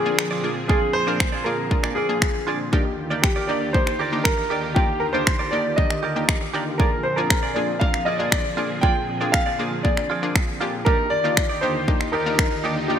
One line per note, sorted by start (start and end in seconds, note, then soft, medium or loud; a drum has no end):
0.00 2.69 A#2 medium
0.00 10.82 D3 medium
0.00 2.69 F3 medium
0.00 2.69 C4 medium
0.00 0.40 G#4 medium
0.00 2.69 G#4 medium
0.05 0.26 A#3 medium
0.05 0.27 D4 medium
0.05 0.27 F4 medium
0.05 0.17 F4 soft
0.05 0.27 G#4 medium
0.05 0.18 G#4 medium
0.05 0.18 D5 medium
0.18 finger snap loud
0.18 muted clean electric guitar stroke soft
0.31 0.42 F4 medium
0.31 0.43 G#4 medium
0.31 0.44 D5 medium
0.43 0.58 A#3 medium
0.43 0.58 D4 medium
0.43 0.60 F4 medium
0.43 0.58 F4 medium
0.43 0.58 G#4 medium
0.43 0.56 G#4 medium
0.43 0.55 D5 medium
0.56 muted clean electric guitar stroke soft
0.68 0.90 A#3 medium
0.68 0.90 D4 medium
0.68 0.89 F4 medium
0.68 0.90 F4 medium
0.68 0.95 G#4 medium
0.68 0.90 G#4 medium
0.68 0.82 G#4 medium
0.68 0.81 D5 medium
0.68 kick loud
0.82 muted clean electric guitar stroke soft
0.93 1.46 C5 loud
0.93 muted clean electric guitar stroke soft
1.07 1.28 A#3 medium
1.07 1.28 D4 medium
1.07 1.28 F4 medium
1.07 1.19 F4 medium
1.07 1.19 G#4 medium
1.07 1.28 A#4 medium
1.07 1.20 D5 medium
1.20 finger snap loud
1.20 kick loud
1.32 1.44 F4 soft
1.32 1.45 G#4 medium
1.32 1.46 D5 medium
1.44 1.59 A#3 medium
1.44 1.59 D4 medium
1.44 1.66 F4 medium
1.44 1.60 F4 medium
1.44 1.60 G#4 medium
1.44 1.58 G#4 medium
1.44 1.97 A#4 medium
1.44 1.57 D5 medium
1.58 muted clean electric guitar stroke soft
1.71 1.92 A#3 medium
1.71 1.92 D4 medium
1.71 1.92 F4 medium
1.71 1.92 G#4 medium
1.71 muted clean electric guitar stroke soft
1.71 kick loud
1.83 1.95 F4 soft
1.83 1.96 G#4 medium
1.83 1.97 D5 medium
1.83 finger snap medium
1.95 2.17 F4 medium
1.95 2.43 G#4 medium
1.95 2.09 G#4 medium
1.95 2.08 D5 medium
2.09 2.30 A#3 medium
2.09 2.30 D4 medium
2.09 2.30 F4 medium
2.09 2.30 G#4 medium
2.09 muted clean electric guitar stroke soft
2.22 finger snap loud
2.22 muted clean electric guitar stroke soft
2.22 kick loud
2.34 muted clean electric guitar stroke soft
2.47 2.61 A#3 medium
2.47 2.61 D4 medium
2.47 2.67 F4 medium
2.47 2.61 F4 medium
2.47 2.61 G#4 medium
2.47 2.60 G#4 medium
2.47 2.59 D5 medium
2.60 muted clean electric guitar stroke soft
2.72 6.76 D#2 medium
2.72 6.76 D#3 medium
2.72 2.93 A#3 medium
2.72 2.94 D4 medium
2.72 2.94 D#4 medium
2.72 6.76 F4 medium
2.72 2.93 G4 medium
2.72 6.76 G4 medium
2.72 2.94 G4 loud
2.72 2.85 A#4 medium
2.72 2.84 D5 medium
2.72 kick loud
2.85 muted clean electric guitar stroke soft
2.98 muted clean electric guitar stroke soft
3.10 3.32 A#3 medium
3.10 3.32 D4 medium
3.10 3.32 D#4 medium
3.10 3.32 G4 medium
3.10 3.22 G4 medium
3.10 3.23 A#4 medium
3.10 3.23 D5 medium
3.22 3.49 G4 medium
3.22 finger snap loud
3.22 kick loud
3.36 3.47 G4 medium
3.36 3.48 A#4 medium
3.36 3.49 D5 medium
3.47 3.63 A#3 medium
3.47 3.63 D4 medium
3.47 3.63 D#4 medium
3.47 3.69 G4 medium
3.47 3.63 G4 medium
3.47 3.62 A#4 medium
3.47 3.74 D5 medium
3.47 3.60 D5 medium
3.61 muted clean electric guitar stroke soft
3.73 3.95 A#3 medium
3.73 3.95 D4 medium
3.73 3.95 D#4 medium
3.73 3.95 G4 medium
3.73 4.21 C5 medium
3.73 muted clean electric guitar stroke soft
3.73 kick medium
3.87 finger snap medium
3.87 muted clean electric guitar stroke soft
3.99 4.13 G4 medium
3.99 4.12 A#4 medium
3.99 4.11 D5 loud
4.12 4.33 A#3 medium
4.12 4.33 D4 medium
4.12 4.33 D#4 medium
4.12 4.33 G4 medium
4.12 4.24 G4 medium
4.12 4.25 A#4 medium
4.12 4.25 D5 medium
4.24 4.60 A#4 medium
4.24 finger snap loud
4.24 muted clean electric guitar stroke soft
4.24 kick loud
4.38 muted clean electric guitar stroke medium
4.50 4.64 A#3 medium
4.50 4.65 D4 medium
4.50 4.65 D#4 medium
4.50 4.64 G4 medium
4.50 4.65 G4 medium
4.50 4.63 A#4 medium
4.50 4.62 D5 medium
4.63 4.74 G4 soft
4.63 4.75 A#4 medium
4.63 4.76 D5 medium
4.75 4.97 A#3 medium
4.75 4.97 D4 medium
4.75 4.97 D#4 medium
4.75 4.97 F4 medium
4.75 5.02 G4 medium
4.75 4.96 G4 medium
4.75 4.89 A#4 medium
4.75 4.87 D5 loud
4.75 kick loud
4.89 muted clean electric guitar stroke soft
5.00 5.05 A#4 medium
5.00 muted clean electric guitar stroke soft
5.13 5.35 A#3 medium
5.13 5.35 D4 medium
5.13 5.35 D#4 medium
5.13 5.35 G4 medium
5.13 5.25 G4 soft
5.13 5.26 A#4 medium
5.13 5.53 C5 loud
5.13 5.27 D5 medium
5.27 finger snap loud
5.27 kick loud
5.39 5.51 G4 medium
5.39 5.52 A#4 medium
5.39 5.53 D5 medium
5.51 5.66 A#3 medium
5.51 5.66 D4 medium
5.51 5.66 D#4 medium
5.51 5.73 G4 medium
5.51 5.66 G4 medium
5.51 5.65 A#4 medium
5.51 5.78 D5 medium
5.51 5.64 D5 medium
5.65 muted clean electric guitar stroke soft
5.76 5.99 A#3 medium
5.76 5.99 D4 medium
5.76 5.99 D#4 medium
5.76 5.99 G4 medium
5.76 6.49 D#5 medium
5.76 muted clean electric guitar stroke soft
5.76 kick loud
5.90 finger snap medium
5.90 muted clean electric guitar stroke soft
6.03 6.16 G4 medium
6.03 6.15 A#4 medium
6.03 6.14 D5 medium
6.15 6.37 A#3 medium
6.15 6.37 D4 medium
6.15 6.37 D#4 medium
6.15 6.37 G4 medium
6.15 6.27 G4 medium
6.15 6.28 A#4 medium
6.15 6.28 D5 medium
6.29 finger snap loud
6.29 muted clean electric guitar stroke soft
6.29 kick loud
6.41 muted clean electric guitar stroke soft
6.54 6.68 A#3 medium
6.54 6.68 D4 medium
6.54 6.68 D#4 medium
6.54 6.74 G4 medium
6.54 6.68 G4 medium
6.54 6.67 A#4 medium
6.54 6.65 D5 loud
6.66 muted clean electric guitar stroke soft
6.78 10.82 A#2 medium
6.78 10.82 F3 medium
6.78 7.00 A#3 medium
6.78 7.00 D4 medium
6.78 7.00 F4 medium
6.78 7.00 G#4 medium
6.78 6.92 G#4 medium
6.78 7.05 A#4 medium
6.78 6.91 D5 medium
6.78 kick loud
6.92 muted clean electric guitar stroke soft
7.03 7.17 C5 medium
7.03 muted clean electric guitar stroke soft
7.16 7.38 A#3 medium
7.16 7.38 D4 medium
7.16 7.39 F4 medium
7.16 7.29 F4 medium
7.16 7.39 G#4 medium
7.16 7.30 G#4 medium
7.16 7.56 A#4 medium
7.16 7.30 D5 medium
7.30 finger snap loud
7.30 kick loud
7.43 7.54 F4 medium
7.43 7.55 G#4 medium
7.43 7.56 D5 medium
7.54 7.70 A#3 medium
7.54 7.70 D4 medium
7.54 7.76 F4 medium
7.54 7.70 F4 medium
7.54 7.70 G#4 medium
7.54 7.68 G#4 medium
7.54 7.81 D5 medium
7.54 7.67 D5 medium
7.68 muted clean electric guitar stroke soft
7.80 8.02 A#3 medium
7.80 8.02 D4 medium
7.80 8.02 F4 medium
7.80 8.02 A#4 medium
7.80 8.07 F5 medium
7.80 muted clean electric guitar stroke soft
7.80 kick loud
7.94 finger snap medium
7.94 muted clean electric guitar stroke soft
8.05 8.20 F4 medium
8.05 8.19 G#4 medium
8.05 8.18 D5 loud
8.05 8.19 D#5 medium
8.18 8.40 A#3 medium
8.18 8.40 D4 medium
8.18 8.40 F4 medium
8.18 8.31 F4 soft
8.18 8.40 G#4 medium
8.18 8.31 G#4 medium
8.18 8.29 D5 medium
8.18 8.32 D5 medium
8.31 8.84 D5 medium
8.31 finger snap loud
8.31 kick loud
8.45 muted clean electric guitar stroke soft
8.57 8.71 A#3 medium
8.57 8.71 D4 medium
8.57 8.78 F4 medium
8.57 8.71 F4 medium
8.57 8.71 G#4 medium
8.57 8.70 G#4 medium
8.57 8.69 D5 medium
8.70 muted clean electric guitar stroke soft
8.81 9.04 A#3 medium
8.81 9.04 D4 medium
8.81 9.03 F4 medium
8.81 9.04 F4 medium
8.81 9.04 G#4 medium
8.81 8.95 G#4 medium
8.81 8.94 D5 medium
8.81 9.35 G5 loud
8.81 kick loud
8.95 muted clean electric guitar stroke soft
9.08 muted clean electric guitar stroke soft
9.21 9.42 A#3 medium
9.21 9.42 D4 medium
9.21 9.42 F4 medium
9.21 9.32 F4 soft
9.21 9.42 G#4 medium
9.21 9.33 G#4 medium
9.21 9.34 D5 medium
9.32 9.80 F5 medium
9.32 finger snap loud
9.32 kick loud
9.46 9.58 F4 soft
9.46 9.59 G#4 medium
9.46 9.59 D5 medium
9.59 9.73 A#3 medium
9.59 9.73 D4 medium
9.59 9.79 F4 medium
9.59 9.73 F4 medium
9.59 9.73 G#4 medium
9.59 9.72 G#4 medium
9.59 9.70 D5 medium
9.72 muted clean electric guitar stroke medium
9.83 10.05 A#3 medium
9.83 10.05 D4 medium
9.83 10.05 F4 medium
9.83 10.06 G#4 medium
9.83 10.31 D5 medium
9.83 muted clean electric guitar stroke soft
9.83 kick loud
9.97 finger snap medium
9.97 muted clean electric guitar stroke medium
10.10 10.23 F4 medium
10.10 10.22 G#4 medium
10.10 10.21 D5 medium
10.22 10.43 A#3 medium
10.22 10.44 D4 medium
10.22 10.44 F4 medium
10.22 10.34 F4 medium
10.22 10.44 G#4 medium
10.22 10.35 G#4 medium
10.22 10.35 D5 medium
10.35 finger snap loud
10.35 muted clean electric guitar stroke soft
10.35 kick loud
10.48 muted clean electric guitar stroke soft
10.61 10.75 A#3 medium
10.61 10.75 D4 medium
10.61 10.81 F4 medium
10.61 10.75 F4 medium
10.61 10.75 G4 medium
10.61 10.74 G#4 medium
10.61 10.72 D5 medium
10.73 muted clean electric guitar stroke soft
10.85 12.99 D#2 medium
10.85 12.99 D3 medium
10.85 12.99 D#3 medium
10.85 11.07 A#3 medium
10.85 11.07 D4 medium
10.85 11.06 D#4 medium
10.85 11.07 D#4 medium
10.85 12.99 F4 medium
10.85 12.99 G4 medium
10.85 11.07 G4 medium
10.85 10.99 G4 medium
10.85 11.12 A#4 medium
10.85 10.98 D5 medium
10.85 kick loud
10.85 swell medium
10.99 muted clean electric guitar stroke soft
11.10 11.63 D5 loud
11.10 muted clean electric guitar stroke soft
11.24 11.45 A#3 medium
11.24 11.45 D4 medium
11.24 11.45 D#4 medium
11.24 11.36 D#4 soft
11.24 11.45 F4 medium
11.24 11.36 G4 medium
11.24 11.37 D5 medium
11.37 finger snap loud
11.37 kick loud
11.49 11.61 D#4 soft
11.49 11.62 G4 medium
11.49 11.63 D5 medium
11.61 11.76 A#3 medium
11.61 11.76 D4 medium
11.61 11.83 D#4 medium
11.61 11.77 D#4 medium
11.61 11.77 G4 medium
11.61 11.75 G4 medium
11.61 12.14 C5 medium
11.61 11.74 D5 medium
11.75 muted clean electric guitar stroke soft
11.88 12.09 A#3 medium
11.88 12.09 D4 medium
11.88 12.09 D#4 medium
11.88 12.09 G4 medium
11.88 muted clean electric guitar stroke soft
11.88 kick loud
12.00 finger snap medium
12.00 muted clean electric guitar stroke soft
12.12 12.26 D#4 medium
12.12 12.25 G4 medium
12.12 12.60 A#4 medium
12.12 12.24 D5 medium
12.26 12.47 A#3 medium
12.26 12.47 D4 medium
12.26 12.47 D#4 medium
12.26 12.37 D#4 soft
12.26 12.38 G4 medium
12.26 12.47 A#4 medium
12.26 12.39 D5 medium
12.38 finger snap loud
12.38 muted clean electric guitar stroke soft
12.38 kick loud
12.51 muted clean electric guitar stroke soft
12.64 12.78 A#3 medium
12.64 12.78 D4 medium
12.64 12.84 D#4 medium
12.64 12.78 D#4 medium
12.64 12.78 G4 medium
12.64 12.77 G4 medium
12.64 12.75 D5 medium
12.77 muted clean electric guitar stroke soft
12.88 12.99 A#3 medium
12.88 12.99 D4 medium
12.88 12.99 D#4 medium
12.88 12.99 F4 medium
12.88 12.99 G4 medium
12.88 12.99 D5 medium